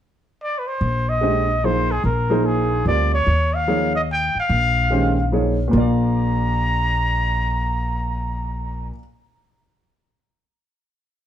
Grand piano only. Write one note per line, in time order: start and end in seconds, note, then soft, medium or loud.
1.21 1.45 G#3 medium
1.21 1.46 D4 soft
1.21 1.46 G4 medium
1.21 1.46 C5 medium
1.21 1.46 D#5 medium
1.64 1.87 F3 medium
1.64 1.87 A#3 soft
1.64 1.87 D#4 soft
1.64 1.88 G#4 soft
1.64 1.88 C5 medium
2.30 2.83 F3 medium
2.30 2.83 A#3 medium
2.30 2.83 D#4 medium
2.30 2.83 G#4 medium
2.30 2.83 C5 medium
2.87 3.10 G3 medium
2.87 3.10 C4 soft
2.87 3.11 F4 soft
2.87 3.11 A#4 soft
2.87 3.11 D5 medium
3.67 3.92 F3 medium
3.67 3.92 A#3 soft
3.67 3.92 D#4 soft
3.67 3.92 G#4 soft
3.67 3.92 C#5 medium
4.90 5.15 D#3 medium
4.90 5.15 G#3 medium
4.90 5.15 C#4 soft
4.90 5.15 G4 medium
4.90 5.16 C5 medium
5.32 5.56 F3 medium
5.32 5.56 A#3 soft
5.32 5.56 D#4 soft
5.32 5.56 G#4 medium
5.32 5.57 C#5 medium
5.68 8.88 A#2 medium
5.68 8.91 A#3 medium
5.74 8.94 F4 medium
5.74 8.97 D5 medium
5.80 9.00 F5 medium